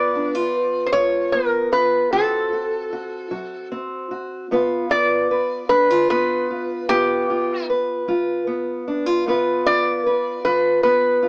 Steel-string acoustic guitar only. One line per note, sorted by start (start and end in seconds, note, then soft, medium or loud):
0.00 0.46 G2 medium
0.00 1.33 B3 medium
0.00 0.15 F4 medium
0.00 0.55 B4 medium
0.15 0.35 D4 medium
0.35 0.93 F4 medium
0.93 1.65 G3 medium
0.93 1.71 F4 medium
1.34 2.08 B3 medium
1.72 2.07 F4 medium
2.12 2.84 D3 medium
2.12 3.70 C4 medium
2.12 2.52 F#4 medium
2.53 2.92 F#4 medium
2.93 3.29 F#4 medium
3.31 4.03 F#3 medium
3.31 4.10 F#4 medium
3.72 4.46 C4 medium
4.11 4.46 F#4 medium
4.51 5.22 G2 medium
4.51 6.11 B3 medium
4.51 4.89 F4 medium
4.51 5.30 B4 medium
4.90 5.70 F4 medium
5.31 7.69 B4 medium
5.70 6.41 G3 medium
5.70 5.90 D4 medium
5.90 6.49 F4 medium
6.11 6.89 B3 medium
6.51 6.90 F4 medium
6.89 7.60 G2 medium
6.89 8.47 B3 medium
6.89 7.30 F4 medium
7.30 8.08 F4 medium
7.70 9.29 B4 medium
8.08 8.79 G3 medium
8.08 8.87 F4 medium
8.47 9.27 B3 medium
8.88 9.06 D4 medium
9.06 9.26 F4 soft
9.26 9.97 G2 medium
9.26 10.84 B3 medium
9.26 9.66 F4 medium
9.26 10.06 B4 medium
9.66 10.45 F4 medium
10.06 11.29 B4 medium
10.45 11.16 G3 medium
10.45 11.22 F4 medium
10.84 11.29 B3 medium
11.23 11.29 F4 medium